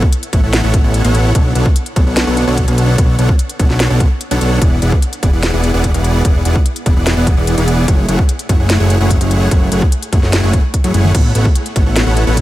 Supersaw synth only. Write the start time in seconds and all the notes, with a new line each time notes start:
0.33 B3 E4 A4 C#5 F#5
0.43 B3 E4 A4 C#5 F#5
0.64 B3 E4 A4 C#5 F#5
0.84 B3 E4 A4 C#5 F#5
1.04 B3 E4 A4 C#5 F#5
1.35 B3 D4 A4 C#5 F#5
1.55 B3 D4 A4 C#5 F#5
1.96 B3 D4 A4 C#5 F#5
2.07 B3 D4 A4 C#5 F#5
2.27 B3 D4 A4 C#5 F#5
2.47 B3 D4 A4 C#5 F#5
2.68 B3 D4 A4 C#5 F#5
2.98 B3 D4 A4 C#5
3.19 B3 D4 A4 C#5 F#5
3.60 B3 D4 A4 C#5 F#5
3.70 B3 D4 A4 C#5 F#5
3.90 B3 D4 A4 C#5 F#5
4.31 B3 D4 A4 C#5 F#5
4.41 B3 D4 A4 C#5 F#5
4.62 B3 E4 G#4 D5 F#5
4.82 B3 E4 G#4 D5 F#5
5.23 B3 E4 G#4 D5 F#5
5.33 B3 E4 G#4 D5 F#5
5.54 B3 E4 G#4 D5 F#5
5.74 B3 E4 G#4 D5 F#5
5.94 B3 E4 G#4 D5 F#5
6.25 B3 E4 G#4 D5 F#5
6.45 B3 E4 G#4 D5 F#5
6.86 B3 E4 G#4 D5 F#5
6.96 B3 E4 G#4 D5 F#5
7.17 B3 E4 G#4 D5 F#5
7.37 B3 E4 G#4 D5 F#5
7.58 B3 E4 G#4 D5 F#5
7.88 E4
8.08 A3 E4 G#4 C#5 F#5
8.49 A3 E4 G#4 C#5 F#5
8.60 A3 E4 G#4 C#5 F#5
8.80 A3 E4 G#4 C#5 F#5
9.00 A3 E4 G#4 C#5 F#5
9.21 A3 E4 G#4 C#5 F#5
9.51 A3 E4 G#4 C#5 F#5
9.72 A3 E4 G#4 C#5 F#5
10.13 A3 E4 G#4 C#5 F#5
10.23 A3 E4 G#4 C#5 F#5
10.43 A3 E4 G#4 C#5 F#5
10.84 A3 E4 G#4 C#5 F#5
10.94 A3 E4 G#4 C#5 F#5
11.15 B3 E4 A4 C#5 F#5
11.35 B3 E4 A4 C#5 F#5
11.76 B3 E4 A4 C#5 F#5
11.86 B3 E4 A4 C#5 F#5
12.07 B3 E4 A4 C#5 F#5
12.27 B3 E4 A4 C#5 F#5